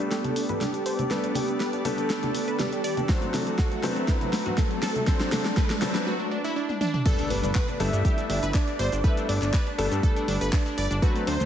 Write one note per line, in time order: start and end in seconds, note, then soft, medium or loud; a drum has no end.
0.00 1.08 G3 medium
0.00 1.08 A3 medium
0.00 1.08 B3 medium
0.00 3.05 B3 medium
0.00 1.08 D4 medium
0.00 3.05 G4 medium
0.00 0.11 A4 medium
0.00 1.08 A4 medium
0.00 6.03 A4 medium
0.00 6.03 D5 medium
0.00 riser medium
0.00 shaker soft
0.11 0.20 G4 medium
0.11 0.62 A4 loud
0.11 snare soft
0.11 closed hi-hat medium
0.11 shaker soft
0.24 0.33 D4 medium
0.24 closed hi-hat soft
0.24 high conga medium
0.24 shaker soft
0.36 0.45 D4 medium
0.36 open hi-hat loud
0.36 shaker medium
0.49 0.57 B4 medium
0.49 closed hi-hat soft
0.49 low conga medium
0.49 shaker soft
0.61 0.70 D4 medium
0.61 1.12 G4 medium
0.61 snare medium
0.61 closed hi-hat medium
0.61 high conga medium
0.61 shaker soft
0.74 0.82 D4 medium
0.74 closed hi-hat soft
0.74 shaker soft
0.86 0.95 C5 medium
0.86 open hi-hat loud
0.86 shaker medium
0.99 1.07 D4 medium
0.99 closed hi-hat soft
0.99 high conga medium
0.99 shaker soft
1.10 1.82 G3 medium
1.10 1.82 A3 medium
1.10 1.82 B3 medium
1.10 1.82 D4 medium
1.10 1.82 A4 medium
1.10 1.35 B4 loud
1.10 1.20 B4 loud
1.10 snare medium
1.10 closed hi-hat medium
1.10 shaker soft
1.24 1.32 D4 medium
1.24 closed hi-hat soft
1.24 shaker soft
1.35 1.44 D4 medium
1.35 1.82 G4 loud
1.35 open hi-hat loud
1.35 high conga medium
1.35 shaker medium
1.48 1.57 D4 medium
1.48 closed hi-hat soft
1.48 shaker soft
1.60 1.69 B4 medium
1.60 snare medium
1.60 closed hi-hat medium
1.60 shaker soft
1.73 1.81 D4 medium
1.73 closed hi-hat soft
1.73 shaker soft
1.85 3.06 G3 medium
1.85 3.06 A3 medium
1.85 3.06 B3 medium
1.85 3.06 D4 medium
1.85 1.94 D4 medium
1.85 3.06 A4 loud
1.85 2.08 A4 loud
1.85 open hi-hat loud
1.85 high conga medium
1.85 shaker medium
1.98 2.06 D4 medium
1.98 closed hi-hat soft
1.98 shaker soft
2.10 2.19 A4 medium
2.10 2.56 A4 loud
2.10 snare medium
2.10 closed hi-hat medium
2.10 shaker soft
2.23 2.31 D4 medium
2.23 closed hi-hat soft
2.23 high conga loud
2.23 shaker soft
2.35 2.44 D4 medium
2.35 open hi-hat loud
2.35 shaker medium
2.48 2.56 B4 medium
2.48 closed hi-hat soft
2.48 shaker soft
2.59 2.68 D4 medium
2.59 3.11 G4 loud
2.59 snare medium
2.59 closed hi-hat medium
2.59 high conga medium
2.59 shaker soft
2.72 2.81 D4 medium
2.72 closed hi-hat soft
2.72 shaker soft
2.84 2.93 D5 medium
2.84 open hi-hat loud
2.84 shaker medium
2.97 3.05 D4 medium
2.97 closed hi-hat soft
2.97 high conga medium
2.97 shaker soft
3.09 3.81 F#3 medium
3.09 3.81 A3 medium
3.09 6.03 C4 medium
3.09 3.81 C4 medium
3.09 3.81 D4 medium
3.09 6.04 F#4 medium
3.09 3.18 F#4 loud
3.09 3.81 A4 medium
3.09 3.36 C5 loud
3.09 kick loud
3.09 snare medium
3.09 closed hi-hat medium
3.09 shaker soft
3.22 3.30 A3 medium
3.22 closed hi-hat soft
3.22 low conga medium
3.22 shaker soft
3.34 3.43 A3 medium
3.34 3.85 A4 loud
3.34 snare medium
3.34 open hi-hat loud
3.34 high conga medium
3.34 shaker medium
3.47 3.55 A3 medium
3.47 closed hi-hat soft
3.47 shaker soft
3.58 3.68 F#4 medium
3.58 kick loud
3.58 snare medium
3.58 closed hi-hat medium
3.58 shaker soft
3.72 3.80 A3 medium
3.72 closed hi-hat soft
3.72 shaker soft
3.83 5.04 F#3 medium
3.83 5.04 A3 medium
3.83 3.92 A3 medium
3.83 5.04 C4 medium
3.83 5.05 D4 medium
3.83 5.04 A4 loud
3.83 4.08 B4 loud
3.83 snare medium
3.83 open hi-hat loud
3.83 high conga medium
3.83 shaker medium
3.96 4.04 A3 medium
3.96 closed hi-hat soft
3.96 shaker soft
4.08 4.17 E4 medium
4.08 4.54 B4 loud
4.08 kick loud
4.08 snare medium
4.08 closed hi-hat medium
4.08 shaker soft
4.21 4.29 A3 medium
4.21 closed hi-hat soft
4.21 high conga medium
4.21 shaker soft
4.33 4.42 A3 medium
4.33 snare medium
4.33 open hi-hat loud
4.33 shaker medium
4.46 4.54 F#4 medium
4.46 closed hi-hat soft
4.46 low conga medium
4.46 shaker soft
4.58 4.67 A3 medium
4.58 5.09 A4 loud
4.58 kick loud
4.58 snare medium
4.58 closed hi-hat medium
4.58 high conga medium
4.58 shaker soft
4.71 4.79 A3 medium
4.71 closed hi-hat soft
4.71 shaker soft
4.83 4.92 A4 medium
4.83 snare medium
4.83 open hi-hat loud
4.83 shaker medium
4.96 5.04 A3 medium
4.96 closed hi-hat soft
4.96 high conga medium
4.96 shaker soft
5.07 5.79 F#3 medium
5.07 5.79 A3 medium
5.07 5.79 C4 medium
5.07 5.79 D4 medium
5.07 5.79 A4 medium
5.07 5.16 A4 loud
5.07 5.34 C5 loud
5.07 kick loud
5.07 snare medium
5.07 closed hi-hat medium
5.07 shaker soft
5.20 5.28 D4 medium
5.20 snare medium
5.20 closed hi-hat soft
5.20 shaker soft
5.32 5.41 D4 medium
5.32 5.83 A4 loud
5.32 snare loud
5.32 open hi-hat loud
5.32 high conga medium
5.32 shaker medium
5.45 5.53 D4 medium
5.45 snare medium
5.45 closed hi-hat soft
5.45 shaker soft
5.57 5.66 B4 medium
5.57 kick loud
5.57 snare loud
5.57 closed hi-hat medium
5.57 shaker soft
5.70 5.78 D4 medium
5.70 snare medium
5.70 closed hi-hat soft
5.70 shaker soft
5.81 6.06 F#3 medium
5.81 6.06 A3 medium
5.81 6.06 C4 medium
5.81 6.06 D4 medium
5.81 5.91 D4 medium
5.81 6.06 A4 loud
5.81 6.07 B4 loud
5.81 snare loud
5.81 open hi-hat loud
5.81 high conga medium
5.81 shaker medium
5.95 6.03 D4 medium
5.95 snare medium
5.95 closed hi-hat soft
5.95 shaker soft
6.07 6.16 F#4 loud
6.20 6.28 D4 medium
6.31 6.40 D4 medium
6.44 6.52 E4 loud
6.56 6.65 D4 medium
6.69 6.77 D4 medium
6.69 high tom medium
6.81 6.90 D4 medium
6.81 mid tom medium
6.94 7.02 D4 medium
6.94 mid tom medium
7.06 7.77 G3 medium
7.06 7.77 A3 medium
7.06 7.77 B3 medium
7.06 7.77 D4 medium
7.06 7.32 A4 loud
7.06 7.77 A4 medium
7.06 7.15 A4 loud
7.06 kick loud
7.06 closed hi-hat medium
7.06 crash loud
7.06 impact medium
7.06 shaker medium
7.19 7.27 D4 medium
7.19 closed hi-hat soft
7.19 shaker soft
7.30 7.41 G1 medium
7.30 7.39 D4 medium
7.30 7.79 B4 loud
7.30 open hi-hat loud
7.43 7.53 G1 medium
7.43 7.52 D4 medium
7.43 closed hi-hat soft
7.43 shaker medium
7.55 7.64 B4 medium
7.55 kick loud
7.55 clap loud
7.55 closed hi-hat medium
7.55 shaker medium
7.68 7.76 D4 medium
7.68 closed hi-hat soft
7.68 shaker soft
7.80 7.91 G1 medium
7.80 9.01 G3 medium
7.80 9.01 A3 medium
7.80 9.01 B3 medium
7.80 7.89 D4 medium
7.80 9.01 D4 medium
7.80 9.01 A4 loud
7.80 8.55 E5 loud
7.80 open hi-hat loud
7.93 8.03 G2 medium
7.93 8.01 D4 medium
7.93 closed hi-hat soft
7.93 shaker medium
8.05 8.14 G4 medium
8.05 kick loud
8.05 closed hi-hat medium
8.05 shaker medium
8.18 8.26 D4 medium
8.18 closed hi-hat soft
8.18 shaker soft
8.29 8.40 G1 loud
8.29 8.39 D4 medium
8.29 open hi-hat loud
8.43 8.52 G1 medium
8.43 8.51 B4 medium
8.43 closed hi-hat soft
8.43 shaker medium
8.54 8.63 D4 medium
8.54 9.05 D5 loud
8.54 kick loud
8.54 clap loud
8.54 closed hi-hat medium
8.54 shaker medium
8.67 8.76 D4 medium
8.67 closed hi-hat soft
8.67 shaker soft
8.79 8.90 G1 medium
8.79 8.88 C5 medium
8.79 open hi-hat loud
8.92 9.02 G1 medium
8.92 9.00 D4 medium
8.92 closed hi-hat soft
8.92 shaker medium
9.04 9.76 G3 medium
9.04 9.76 A3 medium
9.04 9.76 B3 medium
9.04 9.76 D4 medium
9.04 9.76 A4 medium
9.04 9.13 B4 loud
9.04 9.30 E5 loud
9.04 kick loud
9.04 closed hi-hat medium
9.04 shaker medium
9.17 9.25 D4 medium
9.17 closed hi-hat soft
9.17 shaker soft
9.28 9.39 G1 medium
9.28 9.38 D4 medium
9.28 9.78 D5 loud
9.28 open hi-hat loud
9.42 9.51 G1 medium
9.42 9.50 D4 medium
9.42 clap soft
9.42 closed hi-hat soft
9.42 shaker medium
9.54 9.63 B4 loud
9.54 kick loud
9.54 clap loud
9.54 closed hi-hat medium
9.54 shaker medium
9.67 9.75 D4 medium
9.67 closed hi-hat soft
9.67 shaker soft
9.78 9.89 G1 medium
9.78 11.00 G3 medium
9.78 11.00 A3 medium
9.78 11.00 B3 medium
9.78 11.00 D4 medium
9.78 9.87 D4 medium
9.78 10.49 A4 medium
9.78 11.00 A4 loud
9.78 open hi-hat loud
9.91 10.01 G2 medium
9.91 10.00 D4 medium
9.91 closed hi-hat soft
9.91 shaker medium
10.03 10.12 A4 medium
10.03 kick loud
10.03 closed hi-hat medium
10.03 shaker medium
10.16 10.24 D4 medium
10.16 closed hi-hat soft
10.16 shaker soft
10.28 10.39 G1 loud
10.28 10.37 D4 medium
10.28 open hi-hat loud
10.41 10.51 G1 medium
10.41 10.49 B4 medium
10.41 closed hi-hat soft
10.41 shaker medium
10.53 10.62 D4 medium
10.53 kick loud
10.53 clap loud
10.53 closed hi-hat medium
10.53 shaker medium
10.66 10.74 D4 medium
10.66 closed hi-hat soft
10.66 shaker soft
10.78 10.88 G1 medium
10.78 10.87 D5 medium
10.78 open hi-hat loud
10.91 11.00 G1 medium
10.91 10.99 D4 medium
10.91 closed hi-hat soft
10.91 shaker medium
11.02 11.45 F#3 medium
11.02 11.45 A3 medium
11.02 11.45 C4 medium
11.02 11.45 D4 medium
11.02 11.11 F#4 loud
11.02 11.45 A4 medium
11.02 11.26 B4 loud
11.02 kick loud
11.02 closed hi-hat medium
11.02 shaker medium
11.16 11.24 A3 medium
11.16 closed hi-hat soft
11.16 shaker soft
11.27 11.38 D2 loud
11.27 11.36 A3 medium
11.27 11.45 C5 loud
11.27 open hi-hat loud
11.40 11.45 D2 medium
11.40 11.45 A3 medium
11.40 closed hi-hat soft
11.40 shaker medium